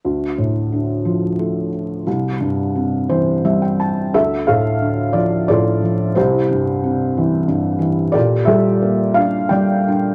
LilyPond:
<<
  \new Staff \with { instrumentName = "Felt piano" } { \time 3/4 \key d \minor \tempo 4 = 88 << { r2. | r4. c''8 e''16 g''16 a''8 | e''8 f''4 d''8 d''4 | c''2 r4 |
d''8 e''4 f''8 g''4 | } \\ { r2. | r2. | a'8 a'4. <f' a'>4 | <e' g'>2 r4 |
<g' a'>8 <g' a'>4. d''4 | } >> }
  \new Staff \with { instrumentName = "Felt piano" } { \clef bass \time 3/4 \key d \minor d,8 a,8 d8 f8 a4 | c,8 g,8 c8 e8 g4 | d,8 a,8 d8 f8 a,8 f8 | c,8 g,8 c8 e8 g,8 e8 |
bes,8 g8 bes8 d'8 g8 d'8 | }
>>